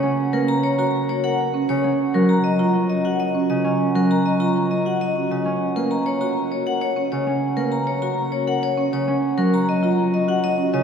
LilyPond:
<<
  \new Staff \with { instrumentName = "Vibraphone" } { \time 6/4 \key fis \major \tempo 4 = 199 r4 ais'8 ais''8 cis''8 ais''8 r8 cis''8 fis''8 r4 cis''8 | r4 ais'8 ais''8 dis''8 ais''8 r8 dis''8 fis''8 dis''8 r8 dis''8 | r4 ais'8 ais''8 dis''8 ais''8 r8 dis''8 fis''8 dis''8 r8 dis''8 | r4 ais'8 ais''8 cis''8 ais''8 r8 cis''8 fis''8 cis''8 r8 cis''8 |
r4 ais'8 ais''8 cis''8 ais''8 r8 cis''8 fis''8 cis''8 r8 cis''8 | r4 ais'8 ais''8 dis''8 ais''8 r8 dis''8 fis''8 dis''8 r8 dis''8 | }
  \new Staff \with { instrumentName = "Marimba" } { \time 6/4 \key fis \major r4 b'8 r4 fis'8 r4 ais'8 r8 cis'8 r8 | r4 ais'8 r4 eis'8 r4 fis'8 r8 cis'8 r8 | r4 ais'8 r4 eis'8 r4 fis'8 r8 cis'8 r8 | r4 b'8 r4 fis'8 r4 ais'8 r8 cis'8 r8 |
r4 b'8 r4 fis'8 r4 ais'8 r8 cis'8 r8 | r4 ais'8 r4 eis'8 r4 fis'8 r8 cis'8 cis''8 | }
  \new Staff \with { instrumentName = "Harp" } { \clef bass \time 6/4 \key fis \major <cis fis ais cis'>4 ais1~ ais8 cis8 | cis'4 fis1~ fis8 cis8 | cis'4 fis1~ fis8 cis8 | cis'4 ais1~ ais8 cis8 |
cis'4 ais1~ ais8 cis8 | cis'4 fis1~ fis8 cis8 | }
>>